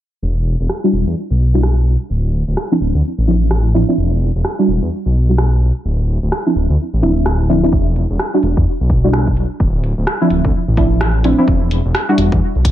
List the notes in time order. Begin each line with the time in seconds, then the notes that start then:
0.23 E1
0.60 E1
0.69 cross-stick
0.84 G3 D4 E4 F#4
0.93 E1
1.07 E2
1.31 B1
1.54 G3 D4 E4 F#4
1.63 cross-stick
2.10 D1
2.48 D1
2.57 cross-stick
2.71 F3 C4 D4 E4
2.81 D1
2.95 D2
3.18 A1
3.27 F3 C4 D4 E4
3.51 cross-stick
3.74 F3 C4 D4 E4
3.88 F3 C4 D4 E4
3.98 E1
4.35 E1
4.45 cross-stick
4.59 G3 D4 E4 F#4
4.68 E1
4.82 E2
5.06 B1
5.29 G3 D4 E4 F#4
5.38 cross-stick
5.85 D1
6.23 D1
6.32 cross-stick
6.46 F3 C4 D4 E4
6.56 D1
6.70 D2
6.93 A1
7.02 D1 F3 C4 D4 E4
7.26 cross-stick
7.49 F3 C4 D4 E4
7.63 F3 C4 D4 E4
7.73 E1, kick
7.96 closed hi-hat
8.10 E1
8.19 cross-stick
8.34 G3 D4 E4 F#4
8.43 E1, closed hi-hat
8.57 E2, kick
8.81 B1
8.90 kick, closed hi-hat
9.04 G3 D4 E4 F#4
9.13 cross-stick
9.27 kick
9.37 closed hi-hat
9.60 D1, kick
9.84 closed hi-hat
9.98 D1
10.07 cross-stick
10.21 F3 C4 D4 E4
10.30 D1, closed hi-hat
10.45 D2, kick
10.68 A1
10.77 F3 C4 D4 E4, kick, closed hi-hat
11.01 cross-stick
11.24 F3 C4 D4 E4, closed hi-hat
11.38 F3 C4 D4 E4
11.48 E1, kick
11.71 closed hi-hat
11.85 E1
11.95 cross-stick
12.09 G3 D4 E4 F#4
12.18 E1, closed hi-hat
12.32 E2, kick
12.56 B1
12.65 kick, closed hi-hat